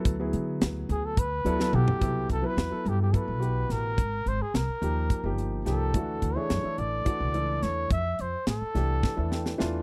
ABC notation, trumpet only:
X:1
M:7/8
L:1/16
Q:1/4=107
K:Clyd
V:1 name="Trumpet"
z6 _A =A B4 G2- | G2 A B3 G G B4 _B2- | _B2 c _A B6 z2 =A2- | A3 ^c3 d6 c2 |
e2 c2 A8 z2 |]